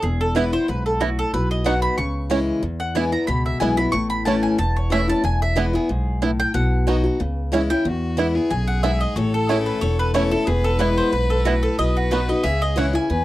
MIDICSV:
0, 0, Header, 1, 6, 480
1, 0, Start_track
1, 0, Key_signature, 4, "major"
1, 0, Tempo, 326619
1, 41, Time_signature, 4, 2, 24, 8
1, 19466, End_track
2, 0, Start_track
2, 0, Title_t, "Mandolin"
2, 0, Program_c, 0, 25
2, 46, Note_on_c, 0, 68, 70
2, 292, Note_off_c, 0, 68, 0
2, 305, Note_on_c, 0, 69, 86
2, 516, Note_off_c, 0, 69, 0
2, 528, Note_on_c, 0, 71, 73
2, 772, Note_off_c, 0, 71, 0
2, 780, Note_on_c, 0, 72, 97
2, 993, Note_off_c, 0, 72, 0
2, 1015, Note_on_c, 0, 71, 68
2, 1254, Note_off_c, 0, 71, 0
2, 1262, Note_on_c, 0, 69, 73
2, 1472, Note_off_c, 0, 69, 0
2, 1476, Note_on_c, 0, 66, 62
2, 1724, Note_off_c, 0, 66, 0
2, 1746, Note_on_c, 0, 69, 92
2, 1953, Note_off_c, 0, 69, 0
2, 1965, Note_on_c, 0, 71, 76
2, 2207, Note_off_c, 0, 71, 0
2, 2218, Note_on_c, 0, 75, 85
2, 2429, Note_off_c, 0, 75, 0
2, 2437, Note_on_c, 0, 78, 87
2, 2669, Note_off_c, 0, 78, 0
2, 2675, Note_on_c, 0, 83, 95
2, 2896, Note_off_c, 0, 83, 0
2, 2904, Note_on_c, 0, 85, 78
2, 3804, Note_off_c, 0, 85, 0
2, 4113, Note_on_c, 0, 78, 89
2, 4333, Note_off_c, 0, 78, 0
2, 4340, Note_on_c, 0, 80, 85
2, 4584, Note_off_c, 0, 80, 0
2, 4590, Note_on_c, 0, 82, 80
2, 4803, Note_off_c, 0, 82, 0
2, 4809, Note_on_c, 0, 83, 93
2, 5065, Note_off_c, 0, 83, 0
2, 5080, Note_on_c, 0, 76, 71
2, 5285, Note_off_c, 0, 76, 0
2, 5291, Note_on_c, 0, 80, 83
2, 5538, Note_off_c, 0, 80, 0
2, 5544, Note_on_c, 0, 83, 105
2, 5753, Note_off_c, 0, 83, 0
2, 5759, Note_on_c, 0, 85, 96
2, 6016, Note_off_c, 0, 85, 0
2, 6022, Note_on_c, 0, 83, 91
2, 6245, Note_off_c, 0, 83, 0
2, 6251, Note_on_c, 0, 81, 80
2, 6502, Note_off_c, 0, 81, 0
2, 6507, Note_on_c, 0, 80, 76
2, 6729, Note_off_c, 0, 80, 0
2, 6741, Note_on_c, 0, 81, 97
2, 6990, Note_off_c, 0, 81, 0
2, 7003, Note_on_c, 0, 73, 67
2, 7217, Note_off_c, 0, 73, 0
2, 7232, Note_on_c, 0, 76, 84
2, 7476, Note_off_c, 0, 76, 0
2, 7487, Note_on_c, 0, 81, 101
2, 7699, Note_off_c, 0, 81, 0
2, 7711, Note_on_c, 0, 80, 77
2, 7955, Note_off_c, 0, 80, 0
2, 7965, Note_on_c, 0, 76, 87
2, 8178, Note_off_c, 0, 76, 0
2, 8178, Note_on_c, 0, 71, 80
2, 8429, Note_off_c, 0, 71, 0
2, 8450, Note_on_c, 0, 68, 74
2, 9098, Note_off_c, 0, 68, 0
2, 9400, Note_on_c, 0, 79, 97
2, 9610, Note_off_c, 0, 79, 0
2, 9616, Note_on_c, 0, 78, 81
2, 10065, Note_off_c, 0, 78, 0
2, 11318, Note_on_c, 0, 79, 111
2, 11534, Note_off_c, 0, 79, 0
2, 12498, Note_on_c, 0, 80, 84
2, 12743, Note_off_c, 0, 80, 0
2, 12749, Note_on_c, 0, 78, 86
2, 12970, Note_off_c, 0, 78, 0
2, 12978, Note_on_c, 0, 76, 89
2, 13230, Note_off_c, 0, 76, 0
2, 13235, Note_on_c, 0, 75, 82
2, 13454, Note_off_c, 0, 75, 0
2, 13460, Note_on_c, 0, 73, 73
2, 13711, Note_off_c, 0, 73, 0
2, 13727, Note_on_c, 0, 69, 86
2, 13940, Note_off_c, 0, 69, 0
2, 13946, Note_on_c, 0, 68, 65
2, 14195, Note_off_c, 0, 68, 0
2, 14198, Note_on_c, 0, 71, 76
2, 14414, Note_off_c, 0, 71, 0
2, 14420, Note_on_c, 0, 73, 93
2, 14672, Note_off_c, 0, 73, 0
2, 14686, Note_on_c, 0, 71, 86
2, 14900, Note_off_c, 0, 71, 0
2, 14907, Note_on_c, 0, 73, 84
2, 15153, Note_off_c, 0, 73, 0
2, 15159, Note_on_c, 0, 69, 85
2, 15377, Note_off_c, 0, 69, 0
2, 15387, Note_on_c, 0, 68, 67
2, 15637, Note_off_c, 0, 68, 0
2, 15641, Note_on_c, 0, 69, 89
2, 15858, Note_off_c, 0, 69, 0
2, 15864, Note_on_c, 0, 71, 76
2, 16116, Note_off_c, 0, 71, 0
2, 16129, Note_on_c, 0, 72, 83
2, 16344, Note_off_c, 0, 72, 0
2, 16351, Note_on_c, 0, 71, 70
2, 16601, Note_off_c, 0, 71, 0
2, 16607, Note_on_c, 0, 69, 76
2, 16824, Note_off_c, 0, 69, 0
2, 16828, Note_on_c, 0, 66, 61
2, 17080, Note_off_c, 0, 66, 0
2, 17087, Note_on_c, 0, 69, 81
2, 17305, Note_off_c, 0, 69, 0
2, 17322, Note_on_c, 0, 75, 102
2, 17569, Note_off_c, 0, 75, 0
2, 17585, Note_on_c, 0, 66, 66
2, 17796, Note_off_c, 0, 66, 0
2, 17801, Note_on_c, 0, 71, 83
2, 18050, Note_off_c, 0, 71, 0
2, 18062, Note_on_c, 0, 75, 85
2, 18276, Note_off_c, 0, 75, 0
2, 18276, Note_on_c, 0, 76, 94
2, 18528, Note_off_c, 0, 76, 0
2, 18542, Note_on_c, 0, 75, 93
2, 18757, Note_off_c, 0, 75, 0
2, 18778, Note_on_c, 0, 78, 76
2, 19021, Note_off_c, 0, 78, 0
2, 19031, Note_on_c, 0, 80, 96
2, 19466, Note_off_c, 0, 80, 0
2, 19466, End_track
3, 0, Start_track
3, 0, Title_t, "Fiddle"
3, 0, Program_c, 1, 110
3, 11542, Note_on_c, 1, 66, 90
3, 12034, Note_on_c, 1, 64, 101
3, 12056, Note_off_c, 1, 66, 0
3, 12277, Note_on_c, 1, 68, 95
3, 12299, Note_off_c, 1, 64, 0
3, 13463, Note_on_c, 1, 69, 103
3, 13485, Note_off_c, 1, 68, 0
3, 14897, Note_off_c, 1, 69, 0
3, 14906, Note_on_c, 1, 69, 102
3, 15384, Note_on_c, 1, 71, 116
3, 15406, Note_off_c, 1, 69, 0
3, 17312, Note_off_c, 1, 71, 0
3, 17330, Note_on_c, 1, 71, 110
3, 18269, Note_on_c, 1, 68, 91
3, 18291, Note_off_c, 1, 71, 0
3, 19016, Note_off_c, 1, 68, 0
3, 19244, Note_on_c, 1, 71, 109
3, 19466, Note_off_c, 1, 71, 0
3, 19466, End_track
4, 0, Start_track
4, 0, Title_t, "Five-string banjo"
4, 0, Program_c, 2, 105
4, 525, Note_on_c, 2, 59, 68
4, 534, Note_on_c, 2, 64, 67
4, 538, Note_off_c, 2, 64, 0
4, 538, Note_on_c, 2, 64, 65
4, 635, Note_off_c, 2, 59, 0
4, 641, Note_off_c, 2, 64, 0
4, 1486, Note_on_c, 2, 59, 63
4, 1493, Note_on_c, 2, 64, 64
4, 1498, Note_off_c, 2, 64, 0
4, 1498, Note_on_c, 2, 64, 64
4, 1593, Note_off_c, 2, 59, 0
4, 1597, Note_off_c, 2, 64, 0
4, 2439, Note_on_c, 2, 59, 65
4, 2444, Note_on_c, 2, 63, 64
4, 2446, Note_on_c, 2, 66, 60
4, 2547, Note_off_c, 2, 59, 0
4, 2549, Note_off_c, 2, 63, 0
4, 2551, Note_off_c, 2, 66, 0
4, 3392, Note_on_c, 2, 61, 69
4, 3398, Note_off_c, 2, 61, 0
4, 3398, Note_on_c, 2, 61, 64
4, 3402, Note_on_c, 2, 64, 61
4, 3505, Note_off_c, 2, 61, 0
4, 3507, Note_off_c, 2, 64, 0
4, 4349, Note_on_c, 2, 59, 64
4, 4359, Note_on_c, 2, 64, 62
4, 4389, Note_off_c, 2, 64, 0
4, 4460, Note_off_c, 2, 59, 0
4, 5314, Note_on_c, 2, 59, 65
4, 5319, Note_on_c, 2, 64, 59
4, 5322, Note_off_c, 2, 64, 0
4, 5322, Note_on_c, 2, 64, 62
4, 5422, Note_off_c, 2, 59, 0
4, 5425, Note_off_c, 2, 64, 0
4, 6275, Note_on_c, 2, 57, 58
4, 6281, Note_on_c, 2, 61, 68
4, 6289, Note_on_c, 2, 64, 69
4, 6381, Note_off_c, 2, 57, 0
4, 6384, Note_off_c, 2, 61, 0
4, 6386, Note_off_c, 2, 64, 0
4, 7234, Note_on_c, 2, 57, 69
4, 7240, Note_on_c, 2, 61, 63
4, 7242, Note_on_c, 2, 64, 61
4, 7341, Note_off_c, 2, 57, 0
4, 7342, Note_off_c, 2, 61, 0
4, 7344, Note_off_c, 2, 64, 0
4, 8182, Note_on_c, 2, 59, 66
4, 8192, Note_on_c, 2, 64, 65
4, 8193, Note_off_c, 2, 64, 0
4, 8193, Note_on_c, 2, 64, 70
4, 8295, Note_off_c, 2, 59, 0
4, 8300, Note_off_c, 2, 64, 0
4, 9143, Note_on_c, 2, 59, 65
4, 9150, Note_on_c, 2, 64, 60
4, 9155, Note_off_c, 2, 64, 0
4, 9155, Note_on_c, 2, 64, 66
4, 9255, Note_off_c, 2, 59, 0
4, 9261, Note_off_c, 2, 64, 0
4, 10102, Note_on_c, 2, 59, 66
4, 10108, Note_on_c, 2, 63, 58
4, 10110, Note_on_c, 2, 66, 66
4, 10215, Note_off_c, 2, 59, 0
4, 10216, Note_off_c, 2, 63, 0
4, 10218, Note_off_c, 2, 66, 0
4, 11067, Note_on_c, 2, 61, 59
4, 11074, Note_off_c, 2, 61, 0
4, 11074, Note_on_c, 2, 61, 62
4, 11081, Note_on_c, 2, 64, 60
4, 11180, Note_off_c, 2, 61, 0
4, 11184, Note_off_c, 2, 64, 0
4, 12025, Note_on_c, 2, 59, 60
4, 12030, Note_on_c, 2, 64, 64
4, 12040, Note_off_c, 2, 64, 0
4, 12040, Note_on_c, 2, 64, 68
4, 12137, Note_off_c, 2, 59, 0
4, 12143, Note_off_c, 2, 64, 0
4, 12986, Note_on_c, 2, 59, 69
4, 12993, Note_on_c, 2, 64, 60
4, 12999, Note_off_c, 2, 64, 0
4, 12999, Note_on_c, 2, 64, 67
4, 13097, Note_off_c, 2, 59, 0
4, 13103, Note_off_c, 2, 64, 0
4, 13952, Note_on_c, 2, 57, 68
4, 13956, Note_on_c, 2, 61, 65
4, 13963, Note_on_c, 2, 64, 63
4, 14061, Note_off_c, 2, 57, 0
4, 14064, Note_off_c, 2, 61, 0
4, 14064, Note_off_c, 2, 64, 0
4, 14909, Note_on_c, 2, 57, 66
4, 14921, Note_on_c, 2, 61, 65
4, 14928, Note_on_c, 2, 64, 68
4, 15023, Note_off_c, 2, 57, 0
4, 15025, Note_off_c, 2, 61, 0
4, 15026, Note_off_c, 2, 64, 0
4, 15876, Note_on_c, 2, 59, 60
4, 15887, Note_on_c, 2, 64, 69
4, 15889, Note_off_c, 2, 64, 0
4, 15889, Note_on_c, 2, 64, 64
4, 15987, Note_off_c, 2, 59, 0
4, 15992, Note_off_c, 2, 64, 0
4, 16847, Note_on_c, 2, 59, 63
4, 16851, Note_on_c, 2, 64, 61
4, 16858, Note_off_c, 2, 64, 0
4, 16858, Note_on_c, 2, 64, 69
4, 16953, Note_off_c, 2, 59, 0
4, 16956, Note_off_c, 2, 64, 0
4, 17811, Note_on_c, 2, 59, 66
4, 17820, Note_on_c, 2, 66, 64
4, 17823, Note_on_c, 2, 63, 60
4, 17918, Note_off_c, 2, 59, 0
4, 17921, Note_off_c, 2, 63, 0
4, 17922, Note_off_c, 2, 66, 0
4, 18773, Note_on_c, 2, 61, 64
4, 18781, Note_on_c, 2, 64, 62
4, 18782, Note_off_c, 2, 61, 0
4, 18782, Note_on_c, 2, 61, 62
4, 18885, Note_off_c, 2, 61, 0
4, 18885, Note_off_c, 2, 64, 0
4, 19466, End_track
5, 0, Start_track
5, 0, Title_t, "Steel-string acoustic guitar"
5, 0, Program_c, 3, 25
5, 36, Note_on_c, 3, 40, 90
5, 511, Note_on_c, 3, 52, 89
5, 525, Note_on_c, 3, 56, 98
5, 533, Note_on_c, 3, 59, 89
5, 546, Note_on_c, 3, 64, 111
5, 755, Note_off_c, 3, 64, 0
5, 761, Note_off_c, 3, 52, 0
5, 768, Note_off_c, 3, 56, 0
5, 772, Note_off_c, 3, 59, 0
5, 773, Note_on_c, 3, 64, 61
5, 808, Note_on_c, 3, 59, 55
5, 950, Note_off_c, 3, 40, 0
5, 987, Note_off_c, 3, 64, 0
5, 1002, Note_on_c, 3, 44, 77
5, 1004, Note_off_c, 3, 59, 0
5, 1455, Note_off_c, 3, 44, 0
5, 1479, Note_on_c, 3, 45, 94
5, 1932, Note_off_c, 3, 45, 0
5, 1966, Note_on_c, 3, 47, 92
5, 2416, Note_on_c, 3, 54, 84
5, 2431, Note_on_c, 3, 59, 87
5, 2440, Note_on_c, 3, 63, 96
5, 2450, Note_on_c, 3, 66, 91
5, 2871, Note_off_c, 3, 47, 0
5, 2879, Note_off_c, 3, 54, 0
5, 2887, Note_off_c, 3, 59, 0
5, 2891, Note_off_c, 3, 63, 0
5, 2896, Note_off_c, 3, 66, 0
5, 2912, Note_on_c, 3, 49, 73
5, 3375, Note_on_c, 3, 52, 93
5, 3386, Note_on_c, 3, 56, 91
5, 3398, Note_on_c, 3, 61, 102
5, 3405, Note_on_c, 3, 64, 92
5, 3823, Note_off_c, 3, 49, 0
5, 3837, Note_off_c, 3, 52, 0
5, 3843, Note_off_c, 3, 56, 0
5, 3848, Note_off_c, 3, 61, 0
5, 3852, Note_off_c, 3, 64, 0
5, 3859, Note_on_c, 3, 40, 86
5, 4333, Note_on_c, 3, 52, 80
5, 4346, Note_on_c, 3, 56, 82
5, 4357, Note_on_c, 3, 59, 88
5, 4364, Note_on_c, 3, 64, 84
5, 4572, Note_off_c, 3, 64, 0
5, 4585, Note_off_c, 3, 52, 0
5, 4590, Note_on_c, 3, 64, 56
5, 4591, Note_off_c, 3, 56, 0
5, 4597, Note_off_c, 3, 59, 0
5, 4619, Note_on_c, 3, 59, 51
5, 4775, Note_off_c, 3, 40, 0
5, 4809, Note_off_c, 3, 64, 0
5, 4823, Note_off_c, 3, 59, 0
5, 4824, Note_on_c, 3, 47, 82
5, 5295, Note_on_c, 3, 52, 84
5, 5305, Note_on_c, 3, 56, 98
5, 5317, Note_on_c, 3, 59, 94
5, 5323, Note_on_c, 3, 64, 98
5, 5534, Note_off_c, 3, 64, 0
5, 5546, Note_off_c, 3, 52, 0
5, 5550, Note_off_c, 3, 56, 0
5, 5551, Note_on_c, 3, 64, 61
5, 5556, Note_off_c, 3, 59, 0
5, 5580, Note_on_c, 3, 59, 46
5, 5738, Note_off_c, 3, 47, 0
5, 5769, Note_off_c, 3, 64, 0
5, 5776, Note_on_c, 3, 45, 82
5, 5783, Note_off_c, 3, 59, 0
5, 6256, Note_on_c, 3, 52, 78
5, 6263, Note_on_c, 3, 57, 90
5, 6277, Note_on_c, 3, 61, 93
5, 6288, Note_on_c, 3, 64, 97
5, 6694, Note_off_c, 3, 45, 0
5, 6716, Note_off_c, 3, 52, 0
5, 6720, Note_off_c, 3, 57, 0
5, 6726, Note_off_c, 3, 61, 0
5, 6732, Note_off_c, 3, 64, 0
5, 7203, Note_on_c, 3, 52, 83
5, 7219, Note_on_c, 3, 57, 82
5, 7231, Note_on_c, 3, 61, 96
5, 7236, Note_on_c, 3, 64, 103
5, 7442, Note_off_c, 3, 64, 0
5, 7459, Note_off_c, 3, 52, 0
5, 7460, Note_on_c, 3, 64, 57
5, 7467, Note_off_c, 3, 57, 0
5, 7473, Note_off_c, 3, 61, 0
5, 7488, Note_on_c, 3, 61, 51
5, 7683, Note_off_c, 3, 64, 0
5, 7695, Note_on_c, 3, 40, 95
5, 7697, Note_off_c, 3, 61, 0
5, 8165, Note_on_c, 3, 52, 87
5, 8175, Note_on_c, 3, 56, 92
5, 8186, Note_on_c, 3, 59, 98
5, 8194, Note_on_c, 3, 64, 84
5, 8407, Note_off_c, 3, 64, 0
5, 8420, Note_off_c, 3, 52, 0
5, 8425, Note_off_c, 3, 56, 0
5, 8425, Note_on_c, 3, 64, 58
5, 8430, Note_off_c, 3, 59, 0
5, 8452, Note_on_c, 3, 59, 48
5, 8613, Note_off_c, 3, 40, 0
5, 8645, Note_off_c, 3, 64, 0
5, 8659, Note_off_c, 3, 59, 0
5, 8659, Note_on_c, 3, 44, 72
5, 9118, Note_off_c, 3, 44, 0
5, 9139, Note_on_c, 3, 45, 87
5, 9598, Note_off_c, 3, 45, 0
5, 9613, Note_on_c, 3, 47, 91
5, 10092, Note_on_c, 3, 54, 90
5, 10100, Note_on_c, 3, 59, 75
5, 10109, Note_on_c, 3, 63, 92
5, 10120, Note_on_c, 3, 66, 89
5, 10323, Note_off_c, 3, 66, 0
5, 10340, Note_on_c, 3, 66, 60
5, 10344, Note_off_c, 3, 54, 0
5, 10347, Note_off_c, 3, 59, 0
5, 10352, Note_off_c, 3, 63, 0
5, 10374, Note_on_c, 3, 63, 46
5, 10532, Note_off_c, 3, 47, 0
5, 10563, Note_off_c, 3, 66, 0
5, 10580, Note_off_c, 3, 63, 0
5, 10580, Note_on_c, 3, 49, 82
5, 11047, Note_on_c, 3, 52, 87
5, 11057, Note_on_c, 3, 56, 97
5, 11068, Note_on_c, 3, 61, 86
5, 11078, Note_on_c, 3, 64, 112
5, 11297, Note_off_c, 3, 64, 0
5, 11301, Note_off_c, 3, 52, 0
5, 11306, Note_off_c, 3, 56, 0
5, 11312, Note_off_c, 3, 61, 0
5, 11314, Note_on_c, 3, 64, 68
5, 11343, Note_on_c, 3, 61, 42
5, 11496, Note_off_c, 3, 49, 0
5, 11530, Note_off_c, 3, 64, 0
5, 11539, Note_on_c, 3, 40, 86
5, 11545, Note_off_c, 3, 61, 0
5, 12006, Note_on_c, 3, 52, 92
5, 12016, Note_on_c, 3, 56, 91
5, 12029, Note_on_c, 3, 59, 80
5, 12035, Note_on_c, 3, 64, 86
5, 12253, Note_off_c, 3, 64, 0
5, 12261, Note_off_c, 3, 52, 0
5, 12266, Note_off_c, 3, 56, 0
5, 12271, Note_on_c, 3, 64, 61
5, 12272, Note_off_c, 3, 59, 0
5, 12305, Note_on_c, 3, 59, 54
5, 12456, Note_off_c, 3, 40, 0
5, 12489, Note_off_c, 3, 64, 0
5, 12506, Note_off_c, 3, 59, 0
5, 12508, Note_on_c, 3, 42, 75
5, 12963, Note_off_c, 3, 42, 0
5, 12986, Note_on_c, 3, 44, 95
5, 13442, Note_off_c, 3, 44, 0
5, 13473, Note_on_c, 3, 45, 91
5, 13956, Note_on_c, 3, 52, 77
5, 13963, Note_on_c, 3, 57, 85
5, 13973, Note_on_c, 3, 61, 98
5, 13983, Note_on_c, 3, 64, 94
5, 14385, Note_off_c, 3, 45, 0
5, 14408, Note_off_c, 3, 52, 0
5, 14412, Note_off_c, 3, 57, 0
5, 14417, Note_off_c, 3, 61, 0
5, 14422, Note_off_c, 3, 64, 0
5, 14434, Note_on_c, 3, 40, 75
5, 14901, Note_on_c, 3, 52, 91
5, 14913, Note_on_c, 3, 57, 96
5, 14919, Note_on_c, 3, 61, 99
5, 14929, Note_on_c, 3, 64, 92
5, 15138, Note_off_c, 3, 64, 0
5, 15150, Note_off_c, 3, 52, 0
5, 15156, Note_off_c, 3, 57, 0
5, 15156, Note_on_c, 3, 64, 64
5, 15160, Note_off_c, 3, 61, 0
5, 15188, Note_on_c, 3, 61, 53
5, 15346, Note_off_c, 3, 40, 0
5, 15374, Note_off_c, 3, 64, 0
5, 15385, Note_on_c, 3, 40, 99
5, 15390, Note_off_c, 3, 61, 0
5, 15852, Note_on_c, 3, 52, 85
5, 15860, Note_on_c, 3, 56, 97
5, 15871, Note_on_c, 3, 59, 101
5, 15880, Note_on_c, 3, 64, 80
5, 16304, Note_off_c, 3, 40, 0
5, 16319, Note_off_c, 3, 52, 0
5, 16323, Note_off_c, 3, 56, 0
5, 16329, Note_off_c, 3, 59, 0
5, 16333, Note_off_c, 3, 64, 0
5, 16349, Note_on_c, 3, 44, 78
5, 16809, Note_off_c, 3, 44, 0
5, 16832, Note_on_c, 3, 45, 97
5, 17291, Note_off_c, 3, 45, 0
5, 17327, Note_on_c, 3, 47, 90
5, 17796, Note_on_c, 3, 54, 85
5, 17806, Note_on_c, 3, 59, 78
5, 17819, Note_on_c, 3, 63, 90
5, 17825, Note_on_c, 3, 66, 91
5, 18037, Note_off_c, 3, 66, 0
5, 18045, Note_off_c, 3, 54, 0
5, 18050, Note_off_c, 3, 59, 0
5, 18055, Note_on_c, 3, 66, 60
5, 18056, Note_off_c, 3, 63, 0
5, 18085, Note_on_c, 3, 63, 49
5, 18241, Note_off_c, 3, 47, 0
5, 18270, Note_off_c, 3, 66, 0
5, 18275, Note_on_c, 3, 49, 74
5, 18285, Note_off_c, 3, 63, 0
5, 18749, Note_on_c, 3, 52, 99
5, 18762, Note_on_c, 3, 56, 95
5, 18772, Note_on_c, 3, 61, 99
5, 18776, Note_on_c, 3, 64, 95
5, 18987, Note_off_c, 3, 64, 0
5, 19004, Note_off_c, 3, 52, 0
5, 19004, Note_on_c, 3, 64, 66
5, 19010, Note_off_c, 3, 56, 0
5, 19015, Note_off_c, 3, 61, 0
5, 19033, Note_on_c, 3, 61, 47
5, 19198, Note_off_c, 3, 49, 0
5, 19228, Note_off_c, 3, 64, 0
5, 19242, Note_off_c, 3, 61, 0
5, 19247, Note_on_c, 3, 40, 84
5, 19466, Note_off_c, 3, 40, 0
5, 19466, End_track
6, 0, Start_track
6, 0, Title_t, "Upright bass"
6, 0, Program_c, 4, 32
6, 44, Note_on_c, 4, 28, 85
6, 806, Note_off_c, 4, 28, 0
6, 1005, Note_on_c, 4, 35, 82
6, 1765, Note_off_c, 4, 35, 0
6, 1961, Note_on_c, 4, 35, 94
6, 2721, Note_off_c, 4, 35, 0
6, 2915, Note_on_c, 4, 37, 88
6, 3676, Note_off_c, 4, 37, 0
6, 3860, Note_on_c, 4, 40, 89
6, 4627, Note_off_c, 4, 40, 0
6, 4823, Note_on_c, 4, 37, 88
6, 5231, Note_off_c, 4, 37, 0
6, 5305, Note_on_c, 4, 35, 87
6, 5712, Note_off_c, 4, 35, 0
6, 5786, Note_on_c, 4, 33, 84
6, 6551, Note_off_c, 4, 33, 0
6, 6742, Note_on_c, 4, 28, 82
6, 7508, Note_off_c, 4, 28, 0
6, 7696, Note_on_c, 4, 28, 88
6, 8464, Note_off_c, 4, 28, 0
6, 8664, Note_on_c, 4, 35, 89
6, 9429, Note_off_c, 4, 35, 0
6, 9620, Note_on_c, 4, 35, 87
6, 10387, Note_off_c, 4, 35, 0
6, 10582, Note_on_c, 4, 37, 96
6, 11349, Note_off_c, 4, 37, 0
6, 11540, Note_on_c, 4, 40, 92
6, 12307, Note_off_c, 4, 40, 0
6, 12506, Note_on_c, 4, 35, 94
6, 13272, Note_off_c, 4, 35, 0
6, 13461, Note_on_c, 4, 33, 97
6, 14229, Note_off_c, 4, 33, 0
6, 14428, Note_on_c, 4, 28, 92
6, 15195, Note_off_c, 4, 28, 0
6, 15387, Note_on_c, 4, 28, 96
6, 16156, Note_off_c, 4, 28, 0
6, 16353, Note_on_c, 4, 35, 92
6, 17122, Note_off_c, 4, 35, 0
6, 17320, Note_on_c, 4, 35, 83
6, 18088, Note_off_c, 4, 35, 0
6, 18286, Note_on_c, 4, 37, 102
6, 19055, Note_off_c, 4, 37, 0
6, 19253, Note_on_c, 4, 40, 96
6, 19466, Note_off_c, 4, 40, 0
6, 19466, End_track
0, 0, End_of_file